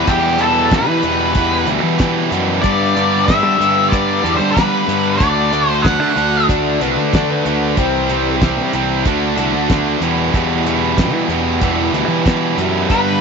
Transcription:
0.07 distorted electric guitar E2 B2 E3 G3 B3 G4, fingered electric bass E2, lead electric guitar G4, kick, closed hi-hat
0.38 distorted electric guitar E2 B2 E3 G3 B3 G4, lead electric guitar A4, closed hi-hat
0.71 distorted electric guitar E2 B2 E3 G3 B3 G4, kick, snare, closed hi-hat
0.76 lead electric guitar B4
0.87 fingered electric bass E3
1.02 fingered electric bass E2, distorted electric guitar E2 B2 E3 G3 B3 G4, closed hi-hat
1.34 distorted electric guitar E2 B2 E3 G3 B3 G4, kick, closed hi-hat
1.66 fingered electric bass D2, distorted electric guitar E2 B2 E3 G3 B3 G4, closed hi-hat
1.83 fingered electric bass E3
1.99 distorted electric guitar E2 B2 E3 G3 B3 G4, kick, snare, closed hi-hat
2.30 distorted electric guitar E2 B2 E3 G3 B3 G4, fingered electric bass F#2, closed hi-hat
2.62 distorted electric guitar G2 D3 G3 B3 D4 G4, fingered electric bass G2, lead electric guitar D5, kick, closed hi-hat
2.95 distorted electric guitar G2 D3 G3 B3 D4 G4, closed hi-hat
3.24 distorted electric guitar G2 D3 G3 B3 D4 G4, lead electric guitar E5, kick
3.29 snare, closed hi-hat
3.43 fingered electric bass G3
3.58 distorted electric guitar G2 D3 G3 B3 D4 G4, fingered electric bass G2, closed hi-hat
3.89 distorted electric guitar G2 D3 G3 B3 D4, lead electric guitar D5, kick, closed hi-hat
3.93 distorted electric guitar G4
4.23 fingered electric bass E2, distorted electric guitar G2 D3 G3 B3 D4 G4, closed hi-hat
4.36 fingered electric bass G3, lead electric guitar C5
4.52 distorted electric guitar G2, lead electric guitar B4
4.56 distorted electric guitar D3 G3 B3 D4 G4, kick, snare, closed hi-hat
4.87 distorted electric guitar G2 D3 G3 B3 D4 G4, fingered electric bass G2, closed hi-hat
5.17 fingered electric bass D2, distorted electric guitar D3 A3 D4 F#4, lead electric guitar D5, kick, closed hi-hat
5.52 distorted electric guitar D3 A3 D4 F#4, closed hi-hat
5.69 lead electric guitar C5
5.82 distorted electric guitar D3 A3 D4 F#4, lead electric guitar F#5, kick, snare, closed hi-hat
6.00 fingered electric bass D3
6.16 fingered electric bass D2, distorted electric guitar D3 A3 D4 F#4, closed hi-hat
6.49 distorted electric guitar D3 A3 D4 F#4, electric slide guitar D5, kick, closed hi-hat
6.80 fingered electric bass C2, distorted electric guitar D3 A3 D4 F#4, electric slide guitar B4, closed hi-hat
6.97 fingered electric bass D3
7.13 distorted electric guitar D3 A3 D4 F#4, electric slide guitar D5, kick, snare, closed hi-hat
7.30 electric slide guitar B4
7.45 fingered electric bass D2, distorted electric guitar D3 A3 D4 F#4, closed hi-hat
7.77 fingered electric bass C2, distorted electric guitar C3 E3 G3 C4 G4, electric slide guitar C5, kick, closed hi-hat
8.09 distorted electric guitar C3 E3 G3 C4 G4, closed hi-hat
8.41 distorted electric guitar C3 E3 G3 C4 G4, kick, snare, closed hi-hat
8.57 fingered electric bass C3
8.73 fingered electric bass C2, distorted electric guitar C3 E3 G3 C4 G4, closed hi-hat
9.05 fingered electric bass D2, distorted electric guitar D3 A3 D4 F#4, kick, closed hi-hat
9.36 fingered electric bass C2, distorted electric guitar D3 A3 D4 F#4, closed hi-hat
9.53 fingered electric bass D2
9.69 distorted electric guitar D3 A3 D4 F#4, kick, snare, closed hi-hat
10.00 fingered electric bass E2, distorted electric guitar E2 B2 E3 G3 B3 G4, closed hi-hat
10.33 distorted electric guitar E2 B2 E3 G3 B3 G4, fingered electric bass E2, kick, closed hi-hat
10.65 distorted electric guitar E2 B2 E3 G3 B3 G4, closed hi-hat
10.96 distorted electric guitar E2 B2 E3 G3 B3 G4, kick, snare, closed hi-hat
11.12 fingered electric bass E3
11.28 fingered electric bass E2, distorted electric guitar E2 B2 E3 G3 B3 G4, closed hi-hat
11.61 distorted electric guitar E2 B2 E3 G3 B3 G4, kick, closed hi-hat
11.93 fingered electric bass D2, distorted electric guitar E2 B2 E3 G3 B3 G4, closed hi-hat
12.08 fingered electric bass E3
12.25 distorted electric guitar E2 B2 E3 G3 B3 G4, kick, snare, closed hi-hat
12.57 distorted electric guitar E2 B2 E3 G3 B3 G4, fingered electric bass F#2, closed hi-hat
12.89 distorted electric guitar G2 D3 G3 B3 D4 G4, fingered electric bass G2, lead electric guitar B4, kick, closed hi-hat

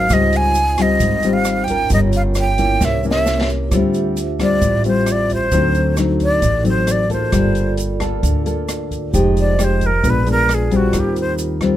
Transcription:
Already playing: vibraphone F#4 A#4 C5 D#5, flute F5
0.09 upright bass C#2, nylon-string guitar C#3 G3 C4 F4, vibraphone D#4 F4 C5, kick, cross-stick, closed hi-hat, shaker
0.13 flute D#5, vibraphone D#5
0.32 closed hi-hat, shaker
0.36 flute G#5
0.54 closed hi-hat, shaker
0.77 nylon-string guitar G3 C4 F4, kick, cross-stick, closed hi-hat, shaker
0.82 flute D#5
1.00 upright bass G#1, nylon-string guitar G#2, kick, closed hi-hat, shaker
1.23 nylon-string guitar G3 C4 F4, closed hi-hat, shaker
1.33 flute F5
1.45 cross-stick, closed hi-hat, shaker
1.64 flute G5, kick, closed hi-hat, shaker
1.69 nylon-string guitar C#4 F4 A#4
1.88 upright bass G1, vibraphone F4, kick, closed hi-hat, shaker
1.92 nylon-string guitar G3, vibraphone A#4 C#5, flute D#5
2.13 flute F5, closed hi-hat, shaker
2.35 cross-stick, closed hi-hat, shaker
2.40 flute G5
2.58 nylon-string guitar A#3 C#4 E4, kick, closed hi-hat, shaker
2.81 upright bass C2, nylon-string guitar C3, vibraphone G4 A#4, flute E5, kick, snare, shaker
2.85 vibraphone C#5
3.04 nylon-string guitar A#3 C#4 E4, shaker
3.10 flute E5, snare
3.26 snare, shaker
3.41 snare
3.49 shaker
3.69 upright bass D2, nylon-string guitar D3, vibraphone F4 G4, kick, cross-stick, closed hi-hat, shaker
3.73 nylon-string guitar G3 C4 F4, vibraphone C5 E5
3.94 closed hi-hat, shaker
4.17 closed hi-hat, shaker
4.39 nylon-string guitar G3 C4 F4, flute D5, kick, cross-stick, closed hi-hat, shaker
4.61 upright bass A1, nylon-string guitar A2, kick, closed hi-hat, shaker
4.84 nylon-string guitar G3 C4 F4, closed hi-hat, shaker
4.88 flute C5
5.06 vibraphone F4 G4 C5 E5, cross-stick, closed hi-hat, shaker
5.12 flute D5
5.29 kick, closed hi-hat, shaker
5.34 flute C5
5.49 upright bass D2, nylon-string guitar D3 F#3 C4, vibraphone F#4 A4, kick, closed hi-hat, shaker
5.53 nylon-string guitar D#4, vibraphone D#4 C5
5.75 closed hi-hat, shaker
5.97 nylon-string guitar F#3 C4 D#4, cross-stick, closed hi-hat, shaker
6.20 flute D5, kick, closed hi-hat, shaker
6.42 upright bass A1, nylon-string guitar A2, kick, closed hi-hat, shaker
6.64 nylon-string guitar F#3 C4 D#4, closed hi-hat, shaker
6.69 flute C5
6.87 cross-stick, closed hi-hat, shaker
6.91 flute D5
7.09 nylon-string guitar A#3 F4 A4, flute C5, kick, closed hi-hat, shaker
7.30 upright bass G1, nylon-string guitar G3, vibraphone F4 A4, kick, cross-stick, closed hi-hat, shaker
7.36 vibraphone D5
7.55 closed hi-hat, shaker
7.77 closed hi-hat, shaker
8.00 nylon-string guitar A#3 F4 A4, kick, cross-stick, closed hi-hat, shaker
8.23 upright bass D2, nylon-string guitar D3, kick, closed hi-hat, shaker
8.46 nylon-string guitar A#3 F4 A4, closed hi-hat, shaker
8.69 cross-stick, closed hi-hat, shaker
8.91 kick, closed hi-hat, shaker
9.11 upright bass F1, nylon-string guitar F3 G#3 D#4 G4, vibraphone G4, kick, closed hi-hat, shaker
9.16 vibraphone C5 D#5
9.37 flute D5, closed hi-hat, shaker
9.58 nylon-string guitar G#3 D#4 G4, cross-stick, closed hi-hat, shaker
9.64 flute C5
9.81 kick, closed hi-hat, shaker
9.86 flute A#4
10.02 upright bass A#1, nylon-string guitar A#2 G#3 B3 D4, vibraphone F4 G#4 B4, kick, closed hi-hat, shaker
10.08 flute B4, vibraphone D5
10.26 nylon-string guitar G#3 B3 D4, closed hi-hat, shaker
10.31 flute A#4
10.49 cross-stick, closed hi-hat, shaker
10.54 flute G#4
10.71 nylon-string guitar G3 C4 F4, kick, closed hi-hat, shaker
10.76 flute F#4
10.91 upright bass D#2, nylon-string guitar D#3, vibraphone F4 G4 A#4, kick, cross-stick, closed hi-hat, shaker
10.97 flute G4, vibraphone C5
11.16 closed hi-hat, shaker
11.21 flute C5
11.38 closed hi-hat, shaker
11.61 nylon-string guitar G3 C4 F4, kick, cross-stick, closed hi-hat, shaker

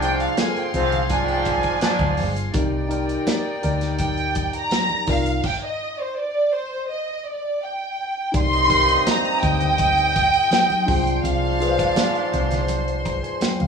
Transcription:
Already playing: fingered electric bass C2, trombone section G#2 F3 D4, tine electric piano F4 G#4 C5, string section G#4 F5 C6
0.00 tine electric piano D4 F4 G#4 C5, violin section G5, closed hi-hat
0.20 violin section F5, closed hi-hat
0.37 trombone section F2 D3 A#3, violin section G#5, snare, closed hi-hat, high conga
0.56 violin section G5, closed hi-hat
0.73 fingered electric bass C2, trombone section G#2 F3 C4, tine electric piano D4 F4 G#4 C5, violin section F5, closed hi-hat
0.92 closed hi-hat, low conga
1.09 trombone section G#2 F3 D4, violin section G#5, kick, closed hi-hat, muted conga
1.27 violin section G5, closed hi-hat
1.45 violin section G#5, kick, closed hi-hat, muted conga
1.63 kick, closed hi-hat
1.81 trombone section G#2 F3 D4, snare, closed hi-hat, high conga
1.99 fingered electric bass D2, kick, closed hi-hat, high conga
2.17 fingered electric bass G1, open hi-hat
2.36 closed hi-hat
2.53 fingered electric bass C2, tine electric piano D#4 G4 A#4 D5, string section D#4 D5 G5, kick, closed hi-hat, muted conga
2.89 tine electric piano D#4 G4 A#4 D5, closed hi-hat
3.09 closed hi-hat
3.27 snare, closed hi-hat, high conga
3.62 fingered electric bass D2, tine electric piano D#4 G4 A#4 D5, closed hi-hat
3.81 snare, closed hi-hat
3.99 violin section G5, kick, closed hi-hat, muted conga
4.18 closed hi-hat
4.35 kick, closed hi-hat, muted conga
4.53 violin section A#5, closed hi-hat
4.71 snare, closed hi-hat, high conga
4.90 high conga
5.07 fingered electric bass C2, tine electric piano D#4 F4 A#4 D5, violin section F5, kick, open hi-hat
5.26 closed hi-hat
5.43 violin section G5, kick, crash
5.64 violin section D#5
6.00 violin section C5
6.18 violin section D5
6.53 violin section C5
6.91 violin section D#5
7.26 violin section D5
7.64 violin section G5
8.32 fingered electric bass C2, trombone section G2 C4 D#4, tine electric piano D#4 G4 A#4 D5, string section D#5 D#6, kick, closed hi-hat, muted conga
8.37 violin section C6
8.53 closed hi-hat
8.68 tine electric piano D#4 G4 A#4 D#5, kick, closed hi-hat, muted conga
8.88 closed hi-hat
9.07 violin section A#5, snare, closed hi-hat, high conga
9.25 closed hi-hat
9.43 fingered electric bass D2, violin section G5, kick, closed hi-hat
9.61 closed hi-hat, low conga
9.78 kick, closed hi-hat, muted conga
9.98 closed hi-hat
10.16 kick, closed hi-hat, muted conga
10.33 closed hi-hat
10.51 snare, closed hi-hat, high conga
10.70 closed hi-hat, high conga
10.86 fingered electric bass C2, trombone section G#2 F3 D4, tine electric piano D4 F4 G#4 C5, string section C5 C6, kick, open hi-hat
11.07 closed hi-hat
11.24 fingered electric bass C2, violin section F5, closed hi-hat, muted conga
11.59 tine electric piano D4 F4 G#4 B4, closed hi-hat, muted conga
11.69 tine electric piano C5
11.79 kick, closed hi-hat
11.96 snare, closed hi-hat, high conga
12.15 closed hi-hat
12.34 fingered electric bass C2, closed hi-hat
12.51 snare, closed hi-hat, low conga
12.68 closed hi-hat, muted conga
12.88 closed hi-hat
13.05 tine electric piano A#5, kick, closed hi-hat, muted conga
13.23 tine electric piano G#5, closed hi-hat
13.41 tine electric piano G5, snare, closed hi-hat, high conga
13.60 fingered electric bass D2, tine electric piano F5, closed hi-hat, high conga

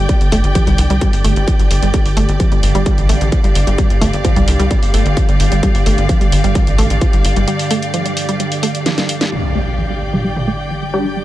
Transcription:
Already playing: ambient pad G2 D3, string section G4 D5 G5
0.09 synth arpeggio sound G3, kick, closed hi-hat
0.21 analog synth bass G1, closed hi-hat
0.32 analog synth bass G1, synth arpeggio sound A3, kick, open hi-hat
0.44 analog synth bass G1, closed hi-hat
0.55 synth arpeggio sound F3, kick, closed hi-hat
0.67 analog synth bass C2, synth arpeggio sound G3, closed hi-hat
0.78 analog synth bass C2, open hi-hat
0.90 analog synth bass C2, synth arpeggio sound G3, closed hi-hat
1.01 synth arpeggio sound G3, kick, closed hi-hat
1.13 analog synth bass G1, open hi-hat
1.24 analog synth bass G1, synth arpeggio sound A3, open hi-hat
1.36 analog synth bass G1, closed hi-hat
1.48 synth arpeggio sound F3, kick, closed hi-hat
1.59 analog synth bass G1, synth arpeggio sound G3, closed hi-hat
1.71 analog synth bass G1, open hi-hat
1.82 analog synth bass G1, synth arpeggio sound G3, closed hi-hat
1.94 synth arpeggio sound G3, kick, closed hi-hat
2.05 analog synth bass G1, open hi-hat
2.17 analog synth bass G1, synth arpeggio sound A3, open hi-hat
2.29 analog synth bass G1, closed hi-hat
2.40 synth arpeggio sound F3, kick, closed hi-hat
2.52 analog synth bass G1, synth arpeggio sound G3, closed hi-hat
2.61 analog synth bass G1, string section F5, open hi-hat
2.75 analog synth bass G1, synth arpeggio sound G3, closed hi-hat
2.86 synth arpeggio sound G3, kick, closed hi-hat
2.98 analog synth bass A1, closed hi-hat
3.09 analog synth bass A1, synth arpeggio sound A3, open hi-hat
3.21 analog synth bass A1, closed hi-hat
3.32 synth arpeggio sound F3, kick, closed hi-hat
3.44 analog synth bass G1, synth arpeggio sound G3, closed hi-hat
3.55 analog synth bass G1, open hi-hat
3.67 analog synth bass G1, synth arpeggio sound G3, closed hi-hat
3.78 synth arpeggio sound G3, kick, closed hi-hat
3.90 analog synth bass G1, closed hi-hat
4.01 analog synth bass G1, synth arpeggio sound A3, kick, open hi-hat
4.13 analog synth bass G1, closed hi-hat
4.25 synth arpeggio sound F3, kick, closed hi-hat
4.36 analog synth bass C2, synth arpeggio sound G3, closed hi-hat
4.48 analog synth bass C2, open hi-hat
4.59 analog synth bass C2, synth arpeggio sound G3, closed hi-hat
4.71 synth arpeggio sound G3, kick, closed hi-hat
4.82 analog synth bass G1, open hi-hat
4.94 analog synth bass G1, synth arpeggio sound A3, open hi-hat
5.06 analog synth bass G1, closed hi-hat
5.17 synth arpeggio sound F3, kick, closed hi-hat
5.29 analog synth bass G1, synth arpeggio sound G3, closed hi-hat
5.40 analog synth bass G1, open hi-hat
5.52 analog synth bass G1, synth arpeggio sound G3, closed hi-hat
5.63 synth arpeggio sound G3, kick, closed hi-hat
5.75 analog synth bass G1, open hi-hat
5.86 analog synth bass G1, synth arpeggio sound A3, open hi-hat
5.98 analog synth bass G1, closed hi-hat
6.09 synth arpeggio sound F3, kick, closed hi-hat
6.21 analog synth bass G1, synth arpeggio sound G3, closed hi-hat
6.32 analog synth bass G1, open hi-hat
6.44 analog synth bass G1, synth arpeggio sound G3, closed hi-hat
6.55 synth arpeggio sound G3, kick, closed hi-hat
6.67 analog synth bass A1, closed hi-hat
6.78 analog synth bass A1, synth arpeggio sound A3, open hi-hat
6.90 analog synth bass A1, closed hi-hat
7.01 synth arpeggio sound F3, kick, closed hi-hat
7.13 analog synth bass G1, synth arpeggio sound G3, closed hi-hat
7.25 analog synth bass G1, open hi-hat
7.36 analog synth bass G1, synth arpeggio sound G3, closed hi-hat
7.48 synth arpeggio sound G3, closed hi-hat
7.59 open hi-hat
7.71 synth arpeggio sound A3, open hi-hat
7.82 closed hi-hat
7.94 synth arpeggio sound F3, closed hi-hat
8.06 synth arpeggio sound G3, closed hi-hat
8.17 open hi-hat
8.29 synth arpeggio sound G3, closed hi-hat
8.40 synth arpeggio sound G3, closed hi-hat
8.52 open hi-hat
8.63 synth arpeggio sound A3, open hi-hat
8.75 closed hi-hat
8.86 synth arpeggio sound F3, snare, closed hi-hat
8.98 synth arpeggio sound G3, snare, closed hi-hat
9.09 open hi-hat
9.21 synth arpeggio sound G3, snare, closed hi-hat
9.32 ambient pad G2 D3, synth arpeggio sound G3, impact
9.48 string section G5
9.55 synth arpeggio sound A3
9.78 synth arpeggio sound F3
9.90 synth arpeggio sound G3
10.13 synth arpeggio sound G3, mid tom
10.24 synth arpeggio sound G3
10.36 mid tom
10.47 synth arpeggio sound A3
10.71 synth arpeggio sound F3
10.82 synth arpeggio sound G3
10.94 synth stab G3 D4 G4
11.05 synth arpeggio sound G3
11.17 synth arpeggio sound G3

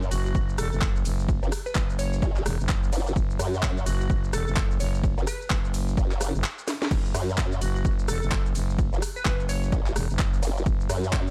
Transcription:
0.02 shaker
0.11 fm bass F#1, synth pluck F#4, open hi-hat, ride, shaker
0.25 synth pluck F#4, shaker
0.35 fm bass F#1, kick, shaker
0.49 shaker
0.58 fm bass E1, synth pluck A4, cross-stick, open hi-hat, ride, shaker
0.72 fm bass F#1, synth pluck A4, shaker
0.81 kick, clap, shaker
0.96 shaker
1.05 fm bass F#1, open hi-hat, ride, shaker
1.19 shaker
1.29 kick, shaker
1.43 wobble bass F#1, shaker
1.52 cross-stick, open hi-hat, ride, shaker
1.66 synth pluck B4, shaker
1.75 fm bass F#1, kick, clap, shaker
1.90 shaker
1.99 synth pluck C#5, open hi-hat, ride, shaker
2.13 shaker
2.22 wobble bass A1, kick, shaker
2.36 clap, shaker
2.46 fm bass E1, cross-stick, open hi-hat, ride, shaker
2.60 fm bass F#1, shaker
2.69 kick, clap, shaker
2.83 shaker
2.92 wobble bass F#1, open hi-hat, ride, shaker
3.07 shaker
3.16 fm bass F#1, kick, shaker
3.30 shaker
3.39 wobble bass F#2, cross-stick, open hi-hat, ride, shaker
3.54 shaker
3.63 kick, clap, shaker
3.77 shaker
3.86 fm bass F#1, synth pluck F#4, open hi-hat, ride, shaker
4.00 synth pluck F#4, shaker
4.10 fm bass F#1, kick, shaker
4.24 shaker
4.33 fm bass E1, synth pluck A4, cross-stick, open hi-hat, ride, shaker
4.47 fm bass F#1, synth pluck A4, shaker
4.56 kick, clap, shaker
4.71 shaker
4.80 fm bass F#1, synth pluck C#5, open hi-hat, ride, shaker
4.94 shaker
5.04 kick, shaker
5.18 wobble bass F#1, shaker
5.27 synth pluck B4, cross-stick, open hi-hat, ride, shaker
5.41 shaker
5.50 fm bass F#1, kick, clap, shaker
5.65 shaker
5.74 open hi-hat, ride, shaker
5.88 shaker
5.97 wobble bass F#1, kick, shaker
6.11 clap, shaker
6.21 cross-stick, open hi-hat, ride, shaker
6.35 fm bass F#1, shaker
6.44 clap, shaker
6.59 shaker
6.68 snare, open hi-hat, ride, shaker
6.82 snare, shaker
6.91 fm bass F#1, kick, crash, shaker
7.05 shaker
7.14 wobble bass F#2, cross-stick, open hi-hat, ride, shaker
7.29 shaker
7.38 kick, clap, shaker
7.52 shaker
7.61 fm bass F#1, synth pluck F#4, open hi-hat, ride, shaker
7.75 synth pluck F#4, shaker
7.85 fm bass F#1, kick, shaker
7.99 shaker
8.08 fm bass E1, synth pluck A4, cross-stick, open hi-hat, ride, shaker
8.22 fm bass F#1, synth pluck A4, shaker
8.31 kick, clap, shaker
8.46 shaker
8.55 fm bass F#1, open hi-hat, ride, shaker
8.69 shaker
8.79 kick, shaker
8.93 wobble bass F#1, shaker
9.02 cross-stick, open hi-hat, ride, shaker
9.16 synth pluck B4, shaker
9.25 fm bass F#1, kick, clap, shaker
9.40 shaker
9.49 synth pluck C#5, open hi-hat, ride, shaker
9.63 shaker
9.72 wobble bass A1, kick, shaker
9.86 clap, shaker
9.96 fm bass E1, cross-stick, open hi-hat, ride, shaker
10.10 fm bass F#1, shaker
10.19 kick, clap, shaker
10.34 shaker
10.43 wobble bass F#1, open hi-hat, ride, shaker
10.57 shaker
10.66 fm bass F#1, kick, shaker
10.80 shaker
10.89 wobble bass F#2, cross-stick, open hi-hat, ride, shaker
11.04 shaker
11.13 kick, clap, shaker
11.27 shaker

